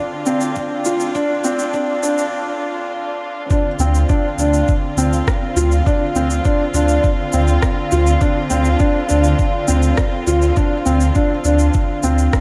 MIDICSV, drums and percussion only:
0, 0, Header, 1, 2, 480
1, 0, Start_track
1, 0, Key_signature, -1, "minor"
1, 0, Tempo, 588235
1, 939, Time_signature, 4, 2, 24, 8
1, 10121, End_track
2, 0, Start_track
2, 0, Title_t, "Drums"
2, 212, Note_on_c, 9, 82, 74
2, 293, Note_off_c, 9, 82, 0
2, 332, Note_on_c, 9, 82, 44
2, 413, Note_off_c, 9, 82, 0
2, 454, Note_on_c, 9, 82, 31
2, 461, Note_on_c, 9, 36, 109
2, 536, Note_off_c, 9, 82, 0
2, 543, Note_off_c, 9, 36, 0
2, 693, Note_on_c, 9, 82, 76
2, 775, Note_off_c, 9, 82, 0
2, 817, Note_on_c, 9, 82, 42
2, 899, Note_off_c, 9, 82, 0
2, 940, Note_on_c, 9, 36, 104
2, 940, Note_on_c, 9, 82, 33
2, 1021, Note_off_c, 9, 36, 0
2, 1021, Note_off_c, 9, 82, 0
2, 1176, Note_on_c, 9, 82, 75
2, 1258, Note_off_c, 9, 82, 0
2, 1298, Note_on_c, 9, 82, 44
2, 1379, Note_off_c, 9, 82, 0
2, 1417, Note_on_c, 9, 82, 32
2, 1420, Note_on_c, 9, 36, 99
2, 1499, Note_off_c, 9, 82, 0
2, 1501, Note_off_c, 9, 36, 0
2, 1657, Note_on_c, 9, 82, 73
2, 1739, Note_off_c, 9, 82, 0
2, 1781, Note_on_c, 9, 82, 46
2, 1862, Note_off_c, 9, 82, 0
2, 2859, Note_on_c, 9, 82, 30
2, 2861, Note_on_c, 9, 36, 100
2, 2940, Note_off_c, 9, 82, 0
2, 2943, Note_off_c, 9, 36, 0
2, 3095, Note_on_c, 9, 82, 70
2, 3177, Note_off_c, 9, 82, 0
2, 3220, Note_on_c, 9, 82, 42
2, 3302, Note_off_c, 9, 82, 0
2, 3339, Note_on_c, 9, 82, 31
2, 3343, Note_on_c, 9, 36, 98
2, 3421, Note_off_c, 9, 82, 0
2, 3425, Note_off_c, 9, 36, 0
2, 3580, Note_on_c, 9, 82, 66
2, 3662, Note_off_c, 9, 82, 0
2, 3701, Note_on_c, 9, 82, 45
2, 3783, Note_off_c, 9, 82, 0
2, 3820, Note_on_c, 9, 82, 30
2, 3824, Note_on_c, 9, 36, 106
2, 3902, Note_off_c, 9, 82, 0
2, 3906, Note_off_c, 9, 36, 0
2, 4062, Note_on_c, 9, 82, 73
2, 4143, Note_off_c, 9, 82, 0
2, 4186, Note_on_c, 9, 82, 39
2, 4267, Note_off_c, 9, 82, 0
2, 4305, Note_on_c, 9, 36, 112
2, 4306, Note_on_c, 9, 37, 80
2, 4306, Note_on_c, 9, 82, 33
2, 4387, Note_off_c, 9, 36, 0
2, 4388, Note_off_c, 9, 37, 0
2, 4388, Note_off_c, 9, 82, 0
2, 4543, Note_on_c, 9, 82, 74
2, 4625, Note_off_c, 9, 82, 0
2, 4665, Note_on_c, 9, 82, 41
2, 4746, Note_off_c, 9, 82, 0
2, 4787, Note_on_c, 9, 36, 114
2, 4789, Note_on_c, 9, 82, 33
2, 4869, Note_off_c, 9, 36, 0
2, 4870, Note_off_c, 9, 82, 0
2, 5023, Note_on_c, 9, 82, 72
2, 5105, Note_off_c, 9, 82, 0
2, 5144, Note_on_c, 9, 82, 47
2, 5225, Note_off_c, 9, 82, 0
2, 5263, Note_on_c, 9, 82, 32
2, 5267, Note_on_c, 9, 36, 100
2, 5344, Note_off_c, 9, 82, 0
2, 5348, Note_off_c, 9, 36, 0
2, 5502, Note_on_c, 9, 82, 70
2, 5583, Note_off_c, 9, 82, 0
2, 5618, Note_on_c, 9, 82, 45
2, 5700, Note_off_c, 9, 82, 0
2, 5743, Note_on_c, 9, 82, 32
2, 5745, Note_on_c, 9, 36, 107
2, 5825, Note_off_c, 9, 82, 0
2, 5827, Note_off_c, 9, 36, 0
2, 5978, Note_on_c, 9, 82, 77
2, 6059, Note_off_c, 9, 82, 0
2, 6101, Note_on_c, 9, 82, 40
2, 6182, Note_off_c, 9, 82, 0
2, 6222, Note_on_c, 9, 37, 75
2, 6222, Note_on_c, 9, 82, 34
2, 6225, Note_on_c, 9, 36, 114
2, 6304, Note_off_c, 9, 37, 0
2, 6304, Note_off_c, 9, 82, 0
2, 6307, Note_off_c, 9, 36, 0
2, 6459, Note_on_c, 9, 82, 73
2, 6540, Note_off_c, 9, 82, 0
2, 6582, Note_on_c, 9, 82, 43
2, 6664, Note_off_c, 9, 82, 0
2, 6699, Note_on_c, 9, 82, 35
2, 6704, Note_on_c, 9, 36, 106
2, 6781, Note_off_c, 9, 82, 0
2, 6786, Note_off_c, 9, 36, 0
2, 6938, Note_on_c, 9, 82, 77
2, 7019, Note_off_c, 9, 82, 0
2, 7056, Note_on_c, 9, 82, 44
2, 7137, Note_off_c, 9, 82, 0
2, 7177, Note_on_c, 9, 82, 33
2, 7184, Note_on_c, 9, 36, 102
2, 7258, Note_off_c, 9, 82, 0
2, 7265, Note_off_c, 9, 36, 0
2, 7419, Note_on_c, 9, 82, 67
2, 7501, Note_off_c, 9, 82, 0
2, 7539, Note_on_c, 9, 82, 48
2, 7621, Note_off_c, 9, 82, 0
2, 7662, Note_on_c, 9, 82, 32
2, 7664, Note_on_c, 9, 36, 108
2, 7744, Note_off_c, 9, 82, 0
2, 7746, Note_off_c, 9, 36, 0
2, 7897, Note_on_c, 9, 82, 80
2, 7979, Note_off_c, 9, 82, 0
2, 8017, Note_on_c, 9, 82, 40
2, 8098, Note_off_c, 9, 82, 0
2, 8139, Note_on_c, 9, 37, 78
2, 8139, Note_on_c, 9, 82, 34
2, 8145, Note_on_c, 9, 36, 111
2, 8221, Note_off_c, 9, 37, 0
2, 8221, Note_off_c, 9, 82, 0
2, 8227, Note_off_c, 9, 36, 0
2, 8382, Note_on_c, 9, 82, 77
2, 8463, Note_off_c, 9, 82, 0
2, 8502, Note_on_c, 9, 82, 42
2, 8584, Note_off_c, 9, 82, 0
2, 8622, Note_on_c, 9, 82, 34
2, 8626, Note_on_c, 9, 36, 104
2, 8704, Note_off_c, 9, 82, 0
2, 8707, Note_off_c, 9, 36, 0
2, 8861, Note_on_c, 9, 82, 71
2, 8943, Note_off_c, 9, 82, 0
2, 8980, Note_on_c, 9, 82, 45
2, 9061, Note_off_c, 9, 82, 0
2, 9099, Note_on_c, 9, 82, 33
2, 9106, Note_on_c, 9, 36, 101
2, 9180, Note_off_c, 9, 82, 0
2, 9188, Note_off_c, 9, 36, 0
2, 9339, Note_on_c, 9, 82, 69
2, 9421, Note_off_c, 9, 82, 0
2, 9457, Note_on_c, 9, 82, 45
2, 9538, Note_off_c, 9, 82, 0
2, 9576, Note_on_c, 9, 82, 31
2, 9586, Note_on_c, 9, 36, 108
2, 9658, Note_off_c, 9, 82, 0
2, 9668, Note_off_c, 9, 36, 0
2, 9817, Note_on_c, 9, 82, 75
2, 9898, Note_off_c, 9, 82, 0
2, 9942, Note_on_c, 9, 82, 43
2, 10024, Note_off_c, 9, 82, 0
2, 10063, Note_on_c, 9, 37, 78
2, 10063, Note_on_c, 9, 82, 34
2, 10065, Note_on_c, 9, 36, 111
2, 10121, Note_off_c, 9, 36, 0
2, 10121, Note_off_c, 9, 37, 0
2, 10121, Note_off_c, 9, 82, 0
2, 10121, End_track
0, 0, End_of_file